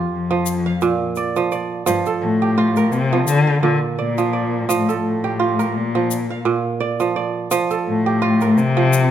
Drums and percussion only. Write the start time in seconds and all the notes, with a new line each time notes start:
0.46 shaker
0.81 shaker
1.16 shaker
1.36 shaker
1.52 shaker
1.87 shaker
2.06 shaker
2.76 shaker
2.92 shaker
3.27 shaker
4.18 shaker
4.70 shaker
4.89 shaker
5.60 shaker
6.11 shaker
7.00 shaker
7.51 shaker
7.71 shaker
8.41 shaker
8.58 shaker
8.93 shaker